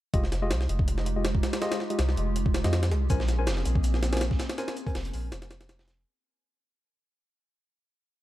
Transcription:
0.14 0.52 F1 loud
0.14 3.07 G#3 medium
0.14 0.24 G#3 medium
0.14 3.07 D#4 medium
0.14 3.07 F4 medium
0.14 0.24 F4 medium
0.14 3.07 G4 loud
0.14 0.24 G4 medium
0.14 0.24 D#5 medium
0.14 kick loud
0.14 closed hi-hat medium
0.24 snare soft
0.32 snare medium
0.32 closed hi-hat medium
0.42 0.51 G#3 medium
0.42 0.51 F4 medium
0.42 0.51 G4 medium
0.42 0.51 D#5 loud
0.51 0.67 C2 loud
0.51 snare loud
0.51 closed hi-hat medium
0.61 snare medium
0.69 1.42 F1 medium
0.69 closed hi-hat medium
0.79 kick medium
0.88 closed hi-hat medium
0.98 snare soft
1.06 closed hi-hat medium
1.16 1.25 G#3 medium
1.16 1.25 F4 medium
1.16 1.25 G4 medium
1.16 1.25 D#5 medium
1.25 snare loud
1.25 closed hi-hat medium
1.35 kick loud
1.43 snare loud
1.43 closed hi-hat medium
1.53 snare loud
1.53 closed hi-hat medium
1.62 1.78 G#3 loud
1.62 1.78 F4 medium
1.62 1.78 G4 medium
1.62 1.78 D#5 loud
1.62 snare loud
1.62 closed hi-hat medium
1.72 snare loud
1.72 closed hi-hat medium
1.80 snare soft
1.90 1.99 G#3 medium
1.90 1.99 F4 medium
1.90 1.99 G4 medium
1.90 1.99 D#5 medium
1.90 closed hi-hat medium
1.99 2.16 C2 loud
1.99 snare loud
1.99 closed hi-hat medium
2.09 snare soft
2.17 2.63 F1 medium
2.17 closed hi-hat medium
2.36 closed hi-hat medium
2.46 kick medium
2.54 snare loud
2.54 closed hi-hat medium
2.64 2.93 F2 loud
2.64 2.80 G#3 medium
2.64 2.80 F4 medium
2.64 2.80 G4 medium
2.64 2.80 D#5 medium
2.64 snare loud
2.64 closed hi-hat medium
2.73 snare loud
2.73 closed hi-hat medium
2.83 snare loud
2.83 closed hi-hat medium
2.92 3.08 C2 loud
2.92 snare soft
2.92 closed hi-hat medium
3.10 3.49 A#1 loud
3.10 6.03 A#3 medium
3.10 6.03 C4 medium
3.10 3.20 C#4 medium
3.10 6.03 C#4 medium
3.10 6.03 G#4 medium
3.10 3.20 A#4 medium
3.10 3.20 C5 medium
3.10 3.20 G#5 medium
3.10 kick loud
3.10 closed hi-hat medium
3.10 shaker medium
3.20 snare soft
3.28 snare medium
3.28 closed hi-hat medium
3.28 shaker medium
3.39 3.48 C#4 medium
3.39 3.48 A#4 medium
3.39 3.48 C5 medium
3.39 3.48 G#5 medium
3.47 3.64 F1 loud
3.47 snare loud
3.47 closed hi-hat medium
3.47 shaker medium
3.57 snare medium
3.65 4.38 A#1 medium
3.65 closed hi-hat medium
3.65 shaker medium
3.75 kick medium
3.84 closed hi-hat medium
3.84 shaker medium
3.94 snare medium
4.03 snare loud
4.03 closed hi-hat medium
4.03 shaker medium
4.13 4.22 C#4 medium
4.13 4.22 A#4 medium
4.13 4.22 C5 medium
4.13 4.22 G#5 medium
4.13 snare medium
4.13 closed hi-hat medium
4.17 snare medium
4.17 closed hi-hat medium
4.21 snare loud
4.21 closed hi-hat medium
4.21 shaker medium
4.31 kick loud
4.31 snare soft
4.39 snare loud
4.39 closed hi-hat medium
4.39 shaker medium
4.50 snare loud
4.50 closed hi-hat medium
4.58 4.74 C#4 loud
4.58 4.74 A#4 medium
4.58 4.74 C5 medium
4.58 4.74 G#5 loud
4.58 snare loud
4.58 closed hi-hat medium
4.58 shaker medium
4.68 snare loud
4.68 closed hi-hat medium
4.76 closed hi-hat medium
4.76 shaker medium
4.87 4.96 C#4 medium
4.87 4.96 A#4 medium
4.87 4.96 C5 medium
4.87 4.96 G#5 medium
4.87 kick loud
4.87 closed hi-hat soft
4.95 5.12 F1 loud
4.95 snare loud
4.95 closed hi-hat medium
4.95 open hi-hat medium
5.05 closed hi-hat soft
5.13 5.32 A#1 medium
5.13 open hi-hat medium
5.13 shaker medium
5.32 6.05 F1 medium
5.32 snare loud
5.32 closed hi-hat medium
5.32 shaker medium
5.42 snare loud
5.42 closed hi-hat medium
5.51 snare loud
5.51 closed hi-hat medium
5.51 shaker medium
5.61 snare loud
5.61 closed hi-hat medium
5.69 snare loud
5.69 closed hi-hat medium
5.69 shaker medium
5.79 snare loud
5.79 snare medium
5.88 snare soft
5.88 snare loud
5.88 closed hi-hat medium
5.88 shaker medium

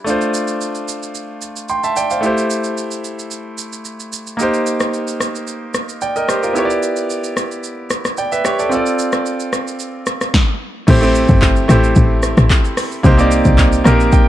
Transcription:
0.04 2.18 A3 medium
0.04 2.19 D4 medium
0.04 2.20 F4 medium
0.04 shaker medium
0.10 1.41 C5 medium
0.21 shaker medium
0.34 shaker medium
0.48 shaker medium
0.61 shaker medium
0.75 shaker medium
0.88 shaker medium
1.03 shaker medium
1.15 shaker medium
1.42 shaker medium
1.56 shaker medium
1.69 1.83 G5 medium
1.69 1.83 C6 medium
1.69 shaker medium
1.84 1.96 E5 medium
1.84 1.96 A5 medium
1.84 shaker medium
1.96 2.10 D5 medium
1.96 2.10 G5 medium
1.96 shaker medium
2.11 2.25 C5 medium
2.11 2.36 F5 medium
2.11 shaker medium
2.21 4.34 A3 medium
2.21 4.35 E4 medium
2.21 4.36 G4 medium
2.21 shaker medium
2.26 4.37 C5 medium
2.38 shaker medium
2.50 shaker medium
2.64 shaker medium
2.78 shaker medium
2.91 shaker medium
3.05 shaker medium
3.19 shaker medium
3.31 shaker medium
3.58 shaker medium
3.73 shaker medium
3.85 shaker medium
4.00 shaker medium
4.13 shaker loud
4.27 shaker medium
4.37 5.97 A#3 medium
4.37 5.98 D#4 medium
4.37 5.99 G4 medium
4.37 shaker medium
4.43 6.00 C5 medium
4.54 shaker medium
4.67 shaker medium
4.80 cross-stick medium
4.80 shaker medium
4.94 shaker medium
5.08 shaker medium
5.21 cross-stick medium
5.21 shaker medium
5.35 shaker medium
5.47 shaker medium
5.74 cross-stick medium
5.74 shaker medium
5.89 shaker medium
6.01 6.15 D5 medium
6.01 6.15 G5 medium
6.01 shaker medium
6.16 6.28 A#4 medium
6.16 6.28 D#5 medium
6.16 shaker medium
6.29 6.42 G4 medium
6.29 6.42 C5 medium
6.29 cross-stick medium
6.29 shaker medium
6.43 6.69 F4 medium
6.43 6.69 A#4 medium
6.43 shaker medium
6.53 8.67 B3 medium
6.53 8.68 E4 medium
6.53 8.15 G4 medium
6.53 shaker medium
6.59 6.64 C#5 medium
6.65 8.17 D5 medium
6.70 shaker medium
6.83 shaker medium
6.96 shaker medium
7.10 shaker medium
7.24 shaker medium
7.37 cross-stick medium
7.37 shaker medium
7.52 shaker medium
7.64 shaker medium
7.90 cross-stick medium
7.90 shaker medium
8.05 cross-stick medium
8.05 shaker medium
8.17 8.32 D5 medium
8.17 8.31 G5 medium
8.17 shaker medium
8.32 8.45 B4 medium
8.32 8.44 E5 medium
8.32 shaker medium
8.45 8.59 G4 medium
8.45 8.58 C#5 medium
8.45 cross-stick medium
8.45 shaker medium
8.59 8.72 A4 medium
8.59 8.74 D5 medium
8.59 shaker medium
8.69 10.30 C4 medium
8.69 10.31 F4 medium
8.69 10.31 A4 medium
8.69 shaker medium
8.75 10.32 D5 medium
8.86 shaker medium
8.99 shaker medium
9.12 cross-stick medium
9.12 shaker medium
9.26 shaker medium
9.40 shaker medium
9.53 cross-stick medium
9.53 shaker medium
9.68 shaker medium
9.80 shaker medium
10.07 cross-stick medium
10.07 shaker medium
10.21 cross-stick medium
10.21 shaker medium
10.34 kick loud
10.34 snare medium
10.87 11.26 A1 loud
10.87 10.99 A3 medium
10.87 10.99 C4 medium
10.87 10.99 E4 medium
10.87 11.00 G4 medium
10.87 11.00 C5 loud
10.87 kick loud
10.87 crash loud
10.87 shaker medium
11.01 11.56 A3 medium
11.01 11.56 C4 medium
11.01 11.56 E4 medium
11.01 11.57 G4 medium
11.01 11.57 C5 loud
11.01 shaker medium
11.15 shaker loud
11.29 11.66 G1 loud
11.29 kick loud
11.29 shaker medium
11.42 kick medium
11.42 clap loud
11.42 shaker medium
11.56 shaker medium
11.68 11.94 A1 medium
11.68 12.55 A3 medium
11.68 12.56 C4 medium
11.68 12.56 E4 medium
11.68 12.56 G4 medium
11.68 12.57 C5 medium
11.68 cross-stick medium
11.68 shaker loud
11.84 shaker medium
11.96 12.34 A1 loud
11.96 kick loud
11.96 shaker medium
12.23 cross-stick medium
12.23 shaker loud
12.37 12.49 A1 medium
12.37 cross-stick loud
12.37 shaker medium
12.50 kick loud
12.50 clap loud
12.50 shaker medium
12.65 shaker medium
12.77 cross-stick loud
12.77 open hi-hat medium
12.77 shaker loud
12.92 shaker medium
13.03 13.42 C2 loud
13.03 13.15 A#3 medium
13.03 13.15 C4 medium
13.03 13.16 D#4 medium
13.03 13.16 G4 medium
13.03 13.16 C5 loud
13.03 kick loud
13.03 shaker medium
13.17 13.72 A#3 medium
13.17 13.72 C4 medium
13.17 13.73 D#4 medium
13.17 13.73 G4 medium
13.17 13.73 D5 loud
13.17 shaker medium
13.31 shaker loud
13.45 13.82 C2 medium
13.45 kick loud
13.45 shaker medium
13.58 kick medium
13.58 clap loud
13.58 shaker medium
13.73 shaker medium
13.84 14.28 A#1 medium
13.84 14.28 A#3 medium
13.84 14.28 C4 medium
13.84 14.28 D#4 medium
13.84 14.28 G4 medium
13.84 14.28 A#4 loud
13.84 14.11 D#5 medium
13.84 cross-stick medium
13.84 shaker loud
14.00 shaker medium
14.12 14.28 G5 medium
14.12 kick loud
14.12 shaker medium

